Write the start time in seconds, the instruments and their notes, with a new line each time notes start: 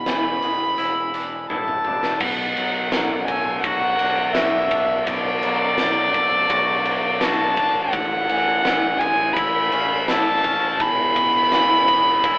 Already playing: clean electric guitar E2 B2, violin B5
0.06 fingered electric bass E1, clean electric guitar E3, snare, closed hi-hat
0.42 fingered electric bass E1, clean electric guitar G#3, closed hi-hat
0.78 fingered electric bass E1, clean electric guitar E4, closed hi-hat
1.14 clean electric guitar D4, closed hi-hat
1.49 fingered electric bass E1, clean electric guitar E4, violin A5, high tom
1.68 mid tom
1.85 fingered electric bass E1, clean electric guitar D4, mid tom
2.03 snare
2.20 fingered electric bass B1, clean electric guitar B2, violin F#5, kick, crash
2.57 fingered electric bass B1, clean electric guitar F#3, ride
2.92 fingered electric bass B1, clean electric guitar F#3, snare, ride
3.26 fingered electric bass B1, clean electric guitar A3, violin G#5, kick, ride
3.62 fingered electric bass B1, violin F#5, kick, ride
3.66 clean electric guitar F#4
3.99 fingered electric bass B1, clean electric guitar D4, ride
4.33 clean electric guitar F#4, violin E5, snare, ride
4.37 fingered electric bass B1
4.71 fingered electric bass B1, clean electric guitar D4, kick, ride
5.04 fingered electric bass B1, violin D5, kick, ride
5.08 clean electric guitar B2
5.43 fingered electric bass B1, clean electric guitar F#3, ride
5.78 fingered electric bass B1, clean electric guitar F#3, snare, ride
6.14 fingered electric bass B1, clean electric guitar A3, kick, ride
6.50 fingered electric bass B1, clean electric guitar F#4, kick, ride
6.86 clean electric guitar D4, ride
7.20 fingered electric bass B1, clean electric guitar F#4, violin A5, snare, ride
7.57 fingered electric bass G#1, clean electric guitar D4, kick, ride
7.91 fingered electric bass A1, clean electric guitar A2, violin F#5, kick, ride
8.29 fingered electric bass A1, clean electric guitar E3, ride
8.65 fingered electric bass A1, clean electric guitar E3, snare, ride
8.98 fingered electric bass A1, clean electric guitar G#3, violin G#5, kick, ride
9.33 fingered electric bass A1, violin B5, kick, ride
9.38 clean electric guitar E4
9.72 fingered electric bass A1, clean electric guitar C#4, ride
10.08 fingered electric bass A1, clean electric guitar E4, violin A5, snare, ride
10.44 fingered electric bass A1, clean electric guitar C#4, kick, ride
10.80 fingered electric bass E1, clean electric guitar E2, violin B5, kick, ride
11.16 fingered electric bass E1, clean electric guitar B2, kick, ride
11.52 fingered electric bass E1, clean electric guitar E3, snare, ride
11.88 fingered electric bass E1, clean electric guitar G#3, kick, ride
12.24 fingered electric bass E1, clean electric guitar E4, kick, ride